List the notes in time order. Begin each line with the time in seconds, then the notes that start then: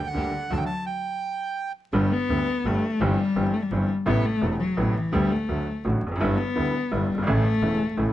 0.07 D3 F#5
0.14 D2 D3 G3 A#3 D4 G4
0.50 D2 D3 F#3 A3 D4 F#4 A5
0.57 D#3 G5
0.66 F#3 A5
0.86 G5
1.93 G1 G2 D3 G3 B3 G4
2.12 B3
2.29 D2 D3 G3 B3 G4
2.65 G1 G2 D3 G3 A3 B3 G4
3.00 G1 G2 E3 G3 C4 G4
3.36 G1 G2 E3 G3 C4 G4
3.53 A3
3.62 G3
3.71 G1 G2 E3 F#3 G3 C4 G4
3.81 G3
4.06 A1 A2 C3 A3 B3 E4
4.26 A3
4.41 E1 E2 C3 A3 B3 E4
4.60 F#3
4.77 A1 A2 C3 A3 B3 E4
4.96 E3
5.12 D2 D3 G3 B3 G4
5.32 A3
5.48 D2 D3 F#3 A3 F#4
5.84 A1 A2 D3 F#3 A3 F#4
6.03 F1
6.07 E2
6.11 F2
6.16 F#2
6.20 G1 G2 D3 G3 B3 E4
6.37 B3
6.55 D2 D3 G3 B3 E4
6.91 G1 G2 D3 G3 B3 E4
7.10 G1
7.14 F#1 G1
7.22 G#1 A3
7.27 A1 A2 C#3 E3 A3 E4
7.62 E1 E2 C#3 E3 A3 E4
7.97 A1 A2 C#3 E3 A3 E4